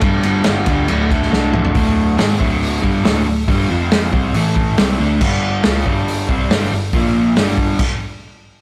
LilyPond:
<<
  \new Staff \with { instrumentName = "Overdriven electric guitar" } { \clef bass \time 4/4 \key d \minor \tempo 4 = 139 <g, d g>8 <g, d g>8 <g, d g>8 <g, d g>8 <d, a, d>8 <d, a, d>8 <d, a, d>8 <d, a, d>8 | <d, a, d>4 <gis, ees gis>8 <d, a, d>4 <g, d g>8 <d, a, d>8 <d, a,>8 | <g, d g>8 <f, c f>4 <c g c'>8 <a, e a>4 <c g c'>8 <d a d'>8 | <g, d g>4 <cis gis cis'>8 <g, d g>4 <c g c'>8 <g, d g>8 <g, d>8 |
<bes, f bes>4 <g, d g>4 r2 | }
  \new Staff \with { instrumentName = "Picked electric bass" } { \clef bass \time 4/4 \key d \minor g,,4 g,,8 d,8 d,,4 c,4 | d,,4 gis,,8 d,,4 g,,8 d,,8 d,,8 | g,,8 f,,4 c,8 a,,4 c,8 d,8 | g,,4 cis,8 g,,4 c,8 g,,8 g,,8 |
bes,,4 g,,4 r2 | }
  \new DrumStaff \with { instrumentName = "Drums" } \drummode { \time 4/4 <bd cymr>8 cymr8 <cymr sn>8 <bd cymr>8 cymr8 <bd cymr>16 sn16 sn8 toml16 tomfh16 | <hho bd>4 <hho sn>8 bd8 hho8 bd8 <hho sn>4 | <hho bd>4 <hho sn>8 bd8 hho8 bd8 <hho sn>4 | <cymc bd>4 <hho sn>8 bd8 hho8 bd8 <hho sn>4 |
<hho bd>4 <hho sn>8 bd8 <cymc bd>4 r4 | }
>>